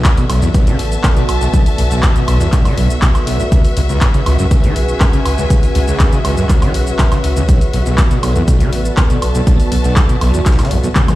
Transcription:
Already playing: analog synth pad B3 F#4 A4 D5, string section F#4 B4 E5
0.04 acid bass E2, kick, snare, clap, closed hi-hat, cabasa
0.12 string section A5
0.17 acid bass B2, closed hi-hat, cabasa
0.30 acid bass B1, sub bass B1, closed hi-hat, open hi-hat, high woodblock
0.42 acid bass E2, closed hi-hat, cabasa
0.54 acid bass B1, kick, closed hi-hat, cabasa
0.67 acid bass D3, closed hi-hat, cabasa
0.79 sub bass A1, snare, closed hi-hat, open hi-hat
0.92 closed hi-hat, cabasa
1.04 acid bass E2, kick, snare, clap, closed hi-hat, cabasa
1.17 acid bass B2, closed hi-hat, cabasa
1.29 sub bass B1, closed hi-hat, open hi-hat, high woodblock
1.41 acid bass B1, closed hi-hat, cabasa
1.54 acid bass B1, kick, closed hi-hat, cabasa
1.66 open hi-hat, cabasa
1.78 acid bass B1, sub bass B1, closed hi-hat, open hi-hat
1.91 acid bass B1, closed hi-hat, cabasa
2.03 kick, snare, clap, closed hi-hat, cabasa
2.16 acid bass B2, closed hi-hat, cabasa
2.28 sub bass B1, acid bass B1, closed hi-hat, open hi-hat, high woodblock
2.41 acid bass E2, closed hi-hat, cabasa
2.52 acid bass B1, kick, clap, closed hi-hat, cabasa
2.65 acid bass D3, open hi-hat, cabasa, high woodblock
2.77 sub bass B1, acid bass B1, closed hi-hat, open hi-hat
2.90 closed hi-hat, cabasa
3.02 acid bass B1, kick, snare, clap, closed hi-hat, cabasa
3.15 snare, closed hi-hat, cabasa, high woodblock
3.27 sub bass B1, acid bass B1, snare, closed hi-hat, open hi-hat
3.40 acid bass A1, closed hi-hat, cabasa
3.52 acid bass C#2, analog synth pad C#4 G#4 B4 E5, kick, closed hi-hat, cabasa
3.65 closed hi-hat, open hi-hat, cabasa
3.77 sub bass C#2, acid bass C#2, closed hi-hat, open hi-hat
3.89 acid bass C#2, closed hi-hat, cabasa
4.01 acid bass F#2, kick, snare, clap, closed hi-hat, cabasa
4.14 acid bass C#3, closed hi-hat, cabasa
4.26 sub bass C#2, acid bass C#2, closed hi-hat, open hi-hat, high woodblock
4.39 acid bass F#2, closed hi-hat, cabasa
4.47 string section G#5
4.51 acid bass C#2, kick, closed hi-hat, cabasa
4.64 acid bass E3, closed hi-hat, cabasa
4.76 sub bass B1, snare, closed hi-hat, open hi-hat
4.88 closed hi-hat, cabasa
5.00 acid bass F#2, kick, snare, clap, closed hi-hat, cabasa
5.13 acid bass C#3, closed hi-hat, cabasa
5.25 sub bass C#2, closed hi-hat, open hi-hat, high woodblock
5.38 acid bass C#2, closed hi-hat, cabasa
5.50 acid bass C#2, analog synth pad C#5, kick, closed hi-hat, cabasa
5.63 open hi-hat, cabasa
5.75 sub bass C#2, acid bass C#2, closed hi-hat, open hi-hat
5.88 acid bass C#2, closed hi-hat, cabasa
5.99 acid bass F#2, kick, snare, clap, closed hi-hat, cabasa
6.13 acid bass C#3, closed hi-hat, cabasa
6.25 acid bass C#2, sub bass C#2, closed hi-hat, open hi-hat, high woodblock
6.37 acid bass F#2, closed hi-hat, cabasa
6.49 acid bass C#2, kick, clap, closed hi-hat, cabasa
6.62 acid bass E3, open hi-hat, cabasa, high woodblock
6.74 sub bass B1, closed hi-hat, open hi-hat
6.87 closed hi-hat, cabasa
6.99 acid bass F#2, kick, snare, clap, closed hi-hat, cabasa
7.12 acid bass C#3, snare, closed hi-hat, cabasa, high woodblock
7.24 sub bass C#2, snare, closed hi-hat, open hi-hat
7.36 acid bass C#2, closed hi-hat, cabasa
7.49 acid bass B1, analog synth pad B3 F#4 A4 D5, kick, closed hi-hat, cabasa
7.61 closed hi-hat, open hi-hat, cabasa
7.73 sub bass B1, acid bass B1, closed hi-hat, open hi-hat
7.86 acid bass B1, closed hi-hat, cabasa
7.98 acid bass E2, kick, snare, clap, closed hi-hat, cabasa
8.11 acid bass B2, closed hi-hat, cabasa
8.23 acid bass B1, sub bass B1, closed hi-hat, open hi-hat, high woodblock
8.36 acid bass E2, closed hi-hat, cabasa
8.48 acid bass B1, kick, closed hi-hat, cabasa
8.60 acid bass D3, closed hi-hat, cabasa
8.73 sub bass A1, string section A5, snare, closed hi-hat, open hi-hat
8.85 closed hi-hat, cabasa
8.97 acid bass E2, kick, snare, clap, closed hi-hat, cabasa
9.10 acid bass B2, closed hi-hat, cabasa
9.22 sub bass B1, closed hi-hat, open hi-hat, high woodblock
9.35 acid bass B1, closed hi-hat, cabasa
9.47 acid bass B1, kick, closed hi-hat, cabasa
9.60 open hi-hat, cabasa
9.72 acid bass B1, sub bass B1, closed hi-hat, open hi-hat
9.84 acid bass B1, closed hi-hat, cabasa
9.96 acid bass E2, kick, snare, clap, closed hi-hat, cabasa
10.09 acid bass B2, closed hi-hat, cabasa
10.21 acid bass B1, sub bass B1, closed hi-hat, open hi-hat, high woodblock
10.34 acid bass E2, closed hi-hat, cabasa
10.46 acid bass B1, kick, snare, clap, closed hi-hat, cabasa
10.52 snare, closed hi-hat
10.59 acid bass D3, snare, closed hi-hat, open hi-hat, cabasa, high woodblock
10.65 snare, closed hi-hat
10.71 sub bass B1, acid bass D2, closed hi-hat, open hi-hat
10.84 acid bass B1, closed hi-hat, cabasa
10.95 acid bass B1, kick, snare, clap, closed hi-hat, high tom, cabasa
11.08 acid bass C#2, snare, closed hi-hat, high tom, cabasa, high woodblock

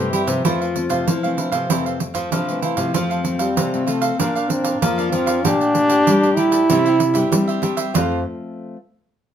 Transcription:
Already playing: nylon-string guitar G2, trombone A3, cavaquinho E4 G4 C5 E5, clarinet G4
0.00 nylon-string guitar G3 C4 E4
0.13 trombone G3, cavaquinho E4 G4 C5 E5, pandeiro
0.27 nylon-string guitar C3, trombone F3, cavaquinho G4 C5 E5, pandeiro
0.45 nylon-string guitar F2 E3 F3 A3 C4, cavaquinho E4 A4 C5 F5, clarinet F4, pandeiro
0.61 cavaquinho A4 C5 F5, pandeiro
0.76 nylon-string guitar A3 C4, muted cavaquinho stroke, pandeiro
0.89 nylon-string guitar C3, cavaquinho A4 C5 F5, pandeiro
1.07 nylon-string guitar C3 F3, clarinet E4, pandeiro
1.23 nylon-string guitar E3 A3 C4, cavaquinho A4 C5 F5, pandeiro
1.37 clarinet D4, cavaquinho E4 A4 C5 F5, pandeiro
1.52 nylon-string guitar C3 E3 A3 C4, cavaquinho A4 C5 F5, pandeiro
1.70 nylon-string guitar F2 E3 A3 C4, clarinet C4, cavaquinho E4 A4 C5 F5, pandeiro
1.86 cavaquinho A4 C5 F5, pandeiro
2.00 nylon-string guitar A3 C4, muted cavaquinho stroke, pandeiro
2.14 nylon-string guitar F3, cavaquinho A4 C5 F5, pandeiro
2.31 nylon-string guitar C3 F3, clarinet D4, cavaquinho E4 A4 C5 F5, pandeiro
2.49 nylon-string guitar E3 A3 C4, pandeiro
2.62 trombone E3, cavaquinho E4 A4 C5 F5, clarinet E4, pandeiro
2.77 nylon-string guitar C3 F3 A3 C4, trombone F3, cavaquinho A4 C5 F5, pandeiro
2.94 nylon-string guitar F2 F3, clarinet C4, cavaquinho F4 A4 C5 F5, pandeiro
3.10 cavaquinho A4 C5 F5, pandeiro
3.24 nylon-string guitar F3 A3 C4, muted cavaquinho stroke, pandeiro
3.39 trombone G3, cavaquinho A4 C5 F5, pandeiro
3.56 nylon-string guitar C3, cavaquinho F4 A4 C5 F5, pandeiro
3.74 nylon-string guitar F3 A3 C4, pandeiro
3.86 trombone A3, cavaquinho F4 A4 C5 F5, pandeiro
4.01 cavaquinho A4 C5 F5, pandeiro
4.19 nylon-string guitar A#2 F3 A#3 D4, trombone A#3, cavaquinho D4 A#4 D5 F5, clarinet D4, pandeiro
4.35 cavaquinho A#4 D5 F5, pandeiro
4.49 nylon-string guitar F3 A#3 D4, trombone C4, muted cavaquinho stroke, pandeiro
4.64 cavaquinho A#4 D5 F5, pandeiro
4.81 nylon-string guitar F2 F3, trombone A#3, clarinet F4, pandeiro
4.98 nylon-string guitar F3 A#3 D4, cavaquinho A#4 D5 F5, pandeiro
5.12 nylon-string guitar F3, trombone C4, cavaquinho D4 A#4 D5 F5, pandeiro
5.26 cavaquinho A#4 D5 F5, pandeiro
5.44 nylon-string guitar A#2 A3 D4 G4, trombone D4, clarinet G4, cavaquinho A#4 D5 G5 A5, pandeiro
5.60 cavaquinho D5 G5 A5, pandeiro
5.74 nylon-string guitar A3 D4 G4, muted cavaquinho stroke, pandeiro
5.89 cavaquinho D5 G5 A5, pandeiro
6.07 nylon-string guitar A#2 G3, cavaquinho A#4 D5 G5 A5, pandeiro
6.23 nylon-string guitar A3 D4 G4, pandeiro
6.36 trombone E4, cavaquinho A#4 D5 G5 A5, pandeiro
6.52 cavaquinho D5 G5 A5, pandeiro
6.69 nylon-string guitar C3 G3 D4 E4, cavaquinho D4 G4 C5 E5, clarinet E4, pandeiro
6.85 cavaquinho G4 C5 E5, pandeiro
7.00 muted cavaquinho stroke, pandeiro
7.14 nylon-string guitar G3 D4 E4, cavaquinho G4 C5 E5, pandeiro
7.32 nylon-string guitar G3, clarinet C4, pandeiro
7.48 cavaquinho G4 C5 E5, pandeiro
7.62 nylon-string guitar G3 D4 E4, cavaquinho D4 G4 C5 E5, pandeiro
7.77 cavaquinho G4 C5 E5, pandeiro
7.94 nylon-string guitar F2 F3 A3 C4 F4, clarinet C4, cavaquinho F4 A4 C5 F5, trombone F4, pandeiro

